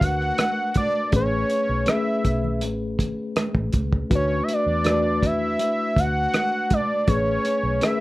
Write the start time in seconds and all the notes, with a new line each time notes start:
Already playing: A3 D4 F#4 A#4 B4
0.01 D2 F#5, kick, closed hi-hat, muted conga
0.21 cross-stick
0.38 cross-stick, closed hi-hat, high conga
0.74 D5, kick, closed hi-hat, high conga
1.12 A1 A3 C#4 G#4 B4, kick, closed hi-hat, muted conga
1.16 C#5
1.50 closed hi-hat
1.69 B1
1.86 A3 C#4 G#4 B4 E5, cross-stick, closed hi-hat, high conga
2.25 B1, kick, closed hi-hat
2.44 low conga
2.61 A1, closed hi-hat, muted conga
2.99 G#1, kick, closed hi-hat, muted conga, low conga
3.36 cross-stick, closed hi-hat, high conga
3.55 A1, kick
3.73 C#2, kick, closed hi-hat, high conga
3.93 kick
4.10 D2 A3 D4 F#4 B4, kick, closed hi-hat, muted conga
4.15 C#5
4.43 E5
4.48 closed hi-hat, muted conga
4.53 D5
4.66 E2
4.84 A3 D4 F#4 B4, cross-stick, closed hi-hat, high conga
5.23 E5, kick, cross-stick, closed hi-hat, low conga
5.59 closed hi-hat, muted conga
5.96 D2 F#5, kick, closed hi-hat, muted conga
6.34 cross-stick, closed hi-hat, high conga
6.70 D5, kick, closed hi-hat, high conga
7.07 A1 A3 C#4 G#4 B4 C#5, kick, closed hi-hat, muted conga
7.45 closed hi-hat, muted conga
7.63 B1
7.81 A3 C#4 G#4 A#4 E5, cross-stick, closed hi-hat, high conga
7.90 B4